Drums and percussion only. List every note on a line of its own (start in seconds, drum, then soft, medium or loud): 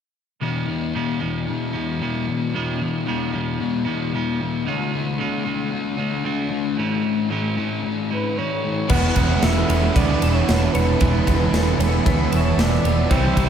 8.89 kick loud
8.89 crash loud
9.16 kick medium
9.16 ride medium
9.43 snare loud
9.43 ride loud
9.70 ride medium
9.96 kick loud
9.96 ride loud
10.22 ride medium
10.49 snare loud
10.49 ride loud
10.75 ride medium
11.00 kick loud
11.00 ride medium
11.27 kick medium
11.27 ride medium
11.54 snare loud
11.54 ride loud
11.80 ride medium
12.06 kick loud
12.06 ride loud
12.32 ride medium
12.59 snare loud
12.59 ride loud
12.72 snare soft
12.85 ride medium
13.11 kick loud
13.11 ride medium
13.37 kick medium
13.37 ride medium